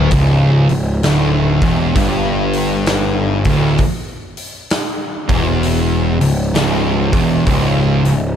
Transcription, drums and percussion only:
0.11 kick, open hi-hat
0.69 open hi-hat
1.03 snare, open hi-hat
1.62 kick, open hi-hat
1.96 kick, open hi-hat
2.53 open hi-hat
2.86 snare, open hi-hat
3.44 kick, open hi-hat
3.78 kick, open hi-hat
4.37 open hi-hat
4.70 snare, open hi-hat
5.29 kick, open hi-hat
5.63 open hi-hat
6.21 open hi-hat
6.55 snare, open hi-hat
7.13 kick, open hi-hat
7.47 kick, open hi-hat
8.05 open hi-hat

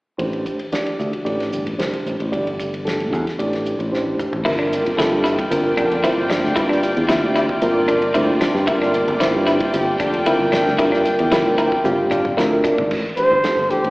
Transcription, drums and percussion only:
0.19 kick, ride
0.33 ride
0.46 kick, hi-hat pedal
0.59 ride
0.72 snare, ride
0.86 ride
0.99 hi-hat pedal
1.13 ride
1.26 ride
1.40 snare, ride
1.53 hi-hat pedal
1.67 ride
1.79 snare, ride
1.93 ride
2.06 hi-hat pedal
2.20 ride
2.33 kick, ride
2.47 ride
2.60 kick, hi-hat pedal
2.74 ride
2.87 snare, ride
3.00 ride
3.13 kick, hi-hat pedal
3.27 snare, ride
3.39 kick, ride
3.53 snare, ride
3.66 hi-hat pedal
3.80 ride
3.94 snare
4.19 hi-hat pedal, mid tom
4.33 floor tom
4.46 kick, crash
4.73 hi-hat pedal, ride
4.86 ride
4.99 snare, hi-hat pedal, ride
5.26 snare, hi-hat pedal, ride
5.39 kick, ride
5.51 hi-hat pedal, ride
5.78 kick, hi-hat pedal, ride
5.92 ride
6.04 hi-hat pedal, ride
6.30 snare, hi-hat pedal, ride
6.45 snare
6.57 kick, hi-hat pedal, ride
6.72 snare
6.83 hi-hat pedal, ride
6.97 ride
7.09 snare, hi-hat pedal, ride
7.36 snare, hi-hat pedal, ride
7.49 kick
7.62 hi-hat pedal, ride
7.88 kick, hi-hat pedal, ride
8.02 ride
8.15 hi-hat pedal, ride
8.41 snare, hi-hat pedal, ride
8.56 snare
8.68 kick, hi-hat pedal, ride
8.82 snare
8.94 hi-hat pedal, ride
9.08 ride
9.21 snare, hi-hat pedal, ride
9.47 snare, hi-hat pedal, ride
9.60 kick, ride
9.74 hi-hat pedal, ride
10.00 kick, hi-hat pedal, ride
10.13 ride
10.26 hi-hat pedal, ride
10.53 snare, hi-hat pedal, ride
10.67 snare
10.79 kick, hi-hat pedal, ride
10.94 snare
11.05 hi-hat pedal, ride
11.19 ride
11.32 snare, hi-hat pedal, ride
11.58 hi-hat pedal, ride
11.72 kick
11.85 hi-hat pedal, high tom
12.11 hi-hat pedal, mid tom
12.25 mid tom
12.38 snare, hi-hat pedal
12.65 kick, hi-hat pedal
12.78 floor tom
12.91 kick, crash
13.17 hi-hat pedal, ride
13.44 snare, hi-hat pedal, ride
13.70 hi-hat pedal, ride
13.84 ride

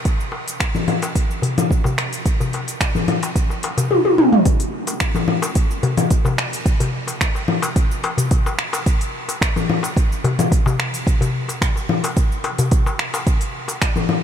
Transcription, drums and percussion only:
0.05 kick, open hi-hat, shaker
0.20 shaker
0.32 darbuka ka
0.48 open hi-hat, shaker
0.60 finger snap, kick, open hi-hat, darbuka ka, shaker
0.75 low conga, shaker
0.88 open hi-hat, low conga
1.02 open hi-hat, darbuka ka, darbuka tek, shaker
1.15 kick, open hi-hat, shaker
1.31 shaker
1.42 open hi-hat, darbuka dum
1.58 open hi-hat, low conga, shaker
1.71 kick, shaker
1.84 darbuka tek, darbuka dum, shaker
1.98 finger snap, open hi-hat, darbuka ka
2.13 open hi-hat, shaker
2.26 kick, open hi-hat, shaker
2.40 darbuka dum, shaker
2.53 open hi-hat, darbuka ka
2.68 open hi-hat, shaker
2.81 finger snap, kick, open hi-hat, darbuka ka, shaker
2.95 low conga, shaker
3.08 open hi-hat, low conga
3.23 open hi-hat, darbuka ka, darbuka tek, shaker
3.36 kick, open hi-hat, shaker
3.50 darbuka ka, shaker
3.63 open hi-hat, darbuka tek
3.78 open hi-hat, darbuka ka, darbuka dum, shaker
3.91 high tom
4.05 high tom
4.18 mid tom
4.33 mid tom
4.45 kick, open hi-hat, shaker
4.60 open hi-hat, shaker
4.87 open hi-hat, darbuka ka, shaker
5.00 finger snap, kick, open hi-hat, shaker
5.15 darbuka ka, low conga, shaker
5.28 low conga
5.42 open hi-hat, darbuka ka, darbuka tek, shaker
5.55 kick, open hi-hat, shaker
5.71 shaker
5.83 open hi-hat, darbuka dum
5.97 open hi-hat, low conga, shaker
6.10 kick, open hi-hat, shaker
6.25 darbuka tek, darbuka dum, shaker
6.38 finger snap, darbuka ka
6.53 open hi-hat, shaker
6.66 kick, open hi-hat, shaker
6.80 open hi-hat, darbuka dum, shaker
7.07 open hi-hat, darbuka ka, shaker
7.21 finger snap, kick, open hi-hat, shaker
7.35 darbuka ka, shaker
7.48 low conga
7.62 open hi-hat, darbuka ka, darbuka tek, shaker
7.76 kick, open hi-hat, shaker
7.91 shaker
8.04 open hi-hat, darbuka tek
8.18 open hi-hat, darbuka dum, shaker
8.31 kick, open hi-hat, shaker
8.46 darbuka tek, shaker
8.59 finger snap
8.73 open hi-hat, darbuka tek, shaker
8.86 kick, open hi-hat, shaker
9.01 open hi-hat, shaker
9.29 open hi-hat, darbuka ka, shaker
9.41 finger snap, kick, open hi-hat, shaker
9.56 darbuka ka, low conga, shaker
9.70 low conga
9.83 open hi-hat, darbuka ka, darbuka tek, shaker
9.97 kick, open hi-hat, shaker
10.12 shaker
10.24 open hi-hat, darbuka dum
10.39 open hi-hat, low conga, shaker
10.52 kick, open hi-hat, shaker
10.66 darbuka tek, darbuka dum, shaker
10.79 finger snap, darbuka ka
10.94 open hi-hat, shaker
11.07 kick, open hi-hat, shaker
11.21 open hi-hat, darbuka dum, shaker
11.49 open hi-hat, darbuka ka, shaker
11.62 finger snap, kick, open hi-hat, shaker
11.76 darbuka ka, shaker
11.89 low conga
12.03 open hi-hat, darbuka ka, darbuka tek, shaker
12.17 kick, open hi-hat, shaker
12.32 shaker
12.44 open hi-hat, darbuka tek
12.58 open hi-hat, darbuka dum, shaker
12.71 kick, open hi-hat, shaker
12.86 darbuka tek, shaker
12.99 finger snap
13.14 open hi-hat, darbuka tek, shaker
13.27 kick, open hi-hat, shaker
13.41 open hi-hat, shaker
13.68 open hi-hat, darbuka ka, shaker
13.82 finger snap, kick, open hi-hat, shaker
13.96 darbuka ka, low conga, shaker
14.09 low conga

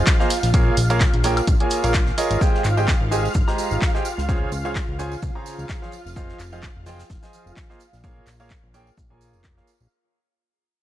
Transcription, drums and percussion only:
0.06 kick, snare, clap, closed hi-hat, tambourine, shaker
0.20 snare
0.30 open hi-hat, tambourine, shaker
0.43 snare, closed hi-hat, tambourine
0.54 kick, closed hi-hat, tambourine, shaker
0.77 open hi-hat, tambourine, shaker
0.90 closed hi-hat, tambourine
1.00 kick, snare, clap, closed hi-hat, tambourine, shaker
1.14 closed hi-hat
1.24 open hi-hat, tambourine, shaker
1.37 closed hi-hat, tambourine, high woodblock
1.47 kick, closed hi-hat, tambourine, shaker
1.60 closed hi-hat
1.70 open hi-hat, tambourine, shaker
1.84 closed hi-hat, tambourine
1.94 kick, snare, clap, closed hi-hat, shaker
2.06 snare
2.18 open hi-hat, tambourine, shaker
2.31 closed hi-hat, tambourine
2.41 kick, tambourine, shaker
2.55 snare
2.64 clap, tambourine, shaker
2.77 tambourine
2.88 kick, snare, clap, tambourine, shaker
3.12 tambourine, shaker
3.25 tambourine
3.34 kick, shaker
3.48 snare
3.58 tambourine, shaker
3.71 tambourine
3.82 kick, snare, clap, tambourine, shaker
3.95 snare
4.05 tambourine, shaker
4.18 snare, tambourine
4.29 kick, tambourine, shaker
4.52 tambourine, shaker
4.65 tambourine
4.75 kick, snare, clap, tambourine, shaker
4.99 tambourine, shaker
5.12 tambourine
5.22 kick, tambourine, shaker
5.46 tambourine, shaker
5.59 tambourine
5.69 kick, snare, clap, tambourine, shaker
5.83 snare
5.92 tambourine, shaker
6.07 tambourine
6.16 kick, tambourine, shaker
6.29 snare
6.39 clap, tambourine, shaker
6.53 tambourine
6.63 kick, snare, clap, tambourine, shaker
6.86 snare, tambourine, shaker
6.99 snare, tambourine, shaker
7.10 kick, snare, tambourine, shaker
7.23 snare, shaker
7.33 tambourine, shaker
7.47 tambourine
7.56 kick, snare, clap, tambourine, shaker
7.70 snare
7.80 tambourine, shaker
7.93 snare, tambourine
8.04 kick, tambourine, shaker
8.26 snare, clap, tambourine, shaker
8.40 tambourine
8.50 kick, snare, clap, tambourine, shaker
8.74 tambourine, shaker
8.87 tambourine
8.97 kick, tambourine, shaker
9.21 tambourine, shaker
9.33 tambourine
9.44 kick, snare, clap, tambourine, shaker
9.57 snare
9.67 tambourine, shaker
9.80 tambourine

